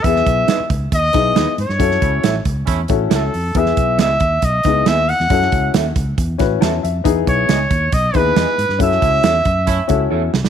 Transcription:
<<
  \new Staff \with { instrumentName = "Trumpet" } { \time 4/4 \key e \major \tempo 4 = 137 e''4. r8 dis''4. cis''8~ | cis''4. r4. a'4 | e''4 e''4 dis''4 e''8 fis''8~ | fis''4 r2. |
r8 cis''4. dis''8 b'4. | e''2. r4 | }
  \new Staff \with { instrumentName = "Clean electric guitar" } { \time 4/4 \key e \major r4 <dis' gis' b' dis''>8 r4. <dis' gis' b' dis''>8 r8 | r4 <e' a' cis'' e''>8 r4. <e' a' cis'' e''>8 r8 | r4 <b e' gis' dis''>8 r4. <b e' gis' dis''>8 r8 | r4 <e' a' cis'' e''>8 r4. <e' a' cis'' e''>8 r8 |
r4 <b e' gis' dis''>8 r4. <b e' gis' dis''>8 r8 | r4 <e' a' cis'' e''>8 r4. <e' a' cis'' e''>8 r8 | }
  \new Staff \with { instrumentName = "Grand piano" } { \time 4/4 \key e \major << { r1 | r1 | r1 | r2. a''8 e''8 |
r1 | r1 | } \\ { <b e' gis'>4 r4. <b dis' e' gis'>4 r8 | <cis' e' fis' a'>4 r4. <cis' e' fis' a'>4 r8 | <b e' gis'>4 r4. <b dis' e' gis'>4 r8 | <cis' e' fis' a'>4 r4. <cis' e' fis' b'>4 r8 |
<b dis' e' gis'>4 r4. <b dis' e' gis'>4 r8 | <cis' e' fis' a'>4 r4. <cis' e' fis' a'>4 r8 | } >> }
  \new Staff \with { instrumentName = "Horn section" } { \time 4/4 \key e \major r1 | r8 <a cis' e'>16 r4 r16 <a cis' e'>8 r4. | r1 | r1 |
r1 | r8 <a cis' e'>16 r4 r16 <a cis' e'>8 r4. | }
  \new Staff \with { instrumentName = "Fingered electric bass" } { \clef bass \time 4/4 \key e \major e,8 b,,8 r8 cis,8 dis,8 b,,8 dis,16 r16 gis,16 g,16 | fis,8 cis,8 a,,8 cis,8 e,8 a,,8 cis,8 f,8 | e,8 b,,8 cis,8 dis,8 b,,8 cis,8 dis,8. e,16 | fis,8 cis,8 dis,8 cis,8 e,8 a,,8 e,8 f,8 |
e,8 b,,8 cis,8 dis,8 b,,8 dis,8 e,16 r16 gis,16 g,16 | fis,8 cis,8 e,8 fis,4 cis,8 e,8 c,8 | }
  \new DrumStaff \with { instrumentName = "Drums" } \drummode { \time 4/4 <hh bd>16 sn16 <hh bd>8 <hh sn>8 <hh bd>8 <hh bd>8 <hh bd sn>8 <hh sn>8 hh16 sn16 | <hh bd>16 sn16 <hh bd>8 <hh sn>8 <hh bd>8 <hh bd>8 <hh bd>8 <hh sn>8 hho8 | <hh bd>16 sn16 <hh bd>8 <hh sn>8 <hh bd>8 <hh bd>8 <hh bd sn>8 <hh sn>8 hho16 sn16 | <hh bd>16 sn16 <hh bd>8 <hh sn>8 <hh bd>8 <hh bd>8 <hh bd sn>8 <hh sn>8 hh8 |
<hh bd>8 <hh bd>8 <hh sn>8 <hh bd>8 <hh bd>8 <hh bd>8 <hh sn>8 hh16 sn16 | <hh bd>16 sn16 <hh bd>8 <hh sn>8 <hh bd>8 <hh bd>8 <hh bd>8 r8 sn16 sn16 | }
>>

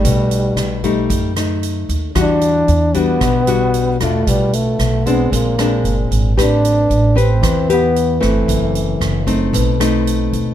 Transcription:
<<
  \new Staff \with { instrumentName = "Nylon-string guitar" } { \time 4/4 \key b \phrygian \tempo 4 = 114 << { <g a ees'>4. <g a dis'>4 <a dis'>4. | <g d' fis'>4 r8 <g d' fis'>4 <g d' fis'>4 <a d' f'>8~ | <a d' f'>4. <aes c' d'>4 <aes c' d'>4. | <c' g' b'>4 r8 <c' g' b'>4 <g' b'>4 <e a c'>8~ |
<e a c'>4. <a c' ees'>4 <a c' dis'>4. | } \\ { b,2 r2 | e2 b,2 | b,2 bes,2 | a2 e2 |
fis,2 b,2 | } >> }
  \new Staff \with { instrumentName = "Trombone" } { \time 4/4 \key b \phrygian g4. r2 r8 | d'4. b2 a8 | g8 a4 b8 bes4. r8 | d'4. c'4 b4 a8~ |
a4. r2 r8 | }
  \new Staff \with { instrumentName = "Upright bass" } { \clef bass \time 4/4 \key b \phrygian b,,4 b,,4 fis,4. dis,8 | e,4 e,4 b,,4. e,8 | b,,4 b,,4 bes,,4 g,,8 aes,,8 | a,,4 a,,4 e,4. g,,8 |
fis,,4 fis,,4 b,,4. dis,8 | }
  \new DrumStaff \with { instrumentName = "Drums" } \drummode { \time 4/4 <hh bd>8 hh8 <hh ss>8 <hh bd>8 <hh bd>8 <hh ss>8 hh8 <hh bd>8 | <hh bd ss>8 hh8 hh8 <hh bd>8 <hh bd ss>8 hh8 hh8 <hh bd ss>8 | <hh bd>8 hh8 <hh ss>8 <hh bd>8 <hh bd>8 <hh ss>8 hh8 <hh bd>8 | <hh bd ss>8 hh8 hh8 <hh bd>8 <hh bd ss>8 hh8 hh8 <hh bd ss>8 |
<hh bd>8 hh8 <hh ss>8 <hh bd>8 <hh bd>8 <hh ss>8 hh8 <hh bd>8 | }
>>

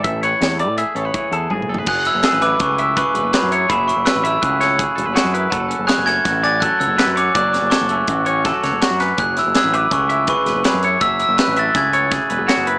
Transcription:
<<
  \new Staff \with { instrumentName = "Glockenspiel" } { \time 5/4 \key fis \minor \tempo 4 = 164 r1 r4 | fis'''8 e'''8 e'''8 d'''8 cis'''4 cis'''2 | b''8 cis'''8 e'''8 e'''8 fis'''2~ fis'''8 r8 | r4 fis'''8 gis'''4 a'''8 fis'''8 e'''4 d'''8 |
fis'''8 d'''8 cis'''2. r4 | fis'''8 e'''8 e'''8 d'''8 cis'''4 cis'''2 | e'''8 e'''8 fis'''8 a'''8 gis'''2~ gis'''8 r8 | }
  \new Staff \with { instrumentName = "Clean electric guitar" } { \time 5/4 \key fis \minor e''8 cis''4 d''8 e''8 cis''4 a'8 gis'4 | r4 gis'8 b'4 e''8 b'4 b'8 cis''8 | e''4 b'8 e''4 cis''8 r4 fis'8 b'8 | a'4 gis'8 a'4 d''8 a'4 b'8 cis''8 |
d''4 a'8 r4 cis''8 a'4 fis'8 b'8 | r4 gis'8 b'4 e''8 b'4 b'8 cis''8 | e''4 b'8 e''4 cis''8 r4 fis'8 b'8 | }
  \new Staff \with { instrumentName = "Clean electric guitar" } { \time 5/4 \key fis \minor << { <e' a'>8 b'4. gis'8 a'16 b'8. gis'4 a'16 b'16 | gis'8 e'8 a'16 b'16 e'8 gis'8 e'8 gis'8 b'8 gis'8 e'8 | gis'8 e'8 b'8 e'8 gis'8 e'8 gis'8 a'16 b'16 gis'8 e'8 | fis'8 cis'8 cis''8 cis'8 fis'8 cis'8 fis'8 cis''8 fis'8 cis'8 |
fis'8 cis'8 cis''8 cis'8 fis'8 cis'8 e'16 fis'16 cis''8 fis'8 cis'8 | gis'8 e'8 b'8 e'8 gis'8 e'8 gis'8 b'8 gis'8 e'8 | gis'8 e'8 b'8 e'8 gis'8 e'8 gis'8 b'8 gis'8 e'8 | } \\ { a,4. a4. e4 a,4 | fis4. a4. cis4 fis4 | fis4. a4. cis4 fis4 | fis4. a4. fis4 fis4 |
fis4. a4. fis4 fis4 | fis4. a4. cis4 fis4 | fis4. a4. cis4 fis4 | } >> }
  \new Staff \with { instrumentName = "Picked electric bass" } { \clef bass \time 5/4 \key fis \minor a,,4 e,8. a,8 r16 a,,8 r8 e,8 gis,,8 fis,,8 | fis,,8. fis,,16 r16 a,,8. cis,4. e,,16 fis,,16 r16 fis,8. | fis,,8. fis,,16 r16 a,,8. cis,4. e,,16 fis,,16 r16 fis,8. | fis,,8. fis,,16 r16 fis,,8. a,,4. cis,16 fis,,16 r16 fis,8. |
fis,,8. fis,,16 r16 fis,,8. a,,4. cis,16 fis,,16 r16 fis,8. | fis,,8. fis,,16 r16 a,,8. cis,4. e,,16 fis,,16 r16 fis,8. | fis,,8. fis,,16 r16 a,,8. cis,4. e,,16 fis,,16 r16 fis,,8. | }
  \new DrumStaff \with { instrumentName = "Drums" } \drummode { \time 5/4 <hh bd>8 hh8 <hh sn>8 hh8 hh8 hh8 <hh bd>8 hh8 \tuplet 3/2 { tommh8 toml8 tomfh8 } | <cymc bd>8 hh8 <hh sn>8 hh8 <hh bd>8 hh8 <hh bd>8 hh8 <hh sn>8 hh8 | <hh bd>8 hh8 <hh sn>8 hh8 <hh bd>8 <hh sn>8 <hh bd>8 hh8 <hh sn>8 hh8 | <hh bd>8 hh8 <hh sn>8 <hh sn>8 <hh bd sn>8 hh8 <hh bd>8 hh8 <hh sn>8 hh8 |
<hh bd>8 <hh sn>8 <hh sn>8 hh8 <hh bd>8 hh8 <hh bd sn>8 <hh sn>8 <hh sn>8 <hh sn>8 | <hh bd>8 <hh sn>8 <hh sn>8 hh8 <hh bd>8 hh8 <hh bd>8 <hh sn>8 <hh sn>8 hh8 | <hh bd>8 hh8 <hh sn>8 hh8 <hh bd sn>8 hh8 <hh bd sn>8 hh8 <hh sn>8 hh8 | }
>>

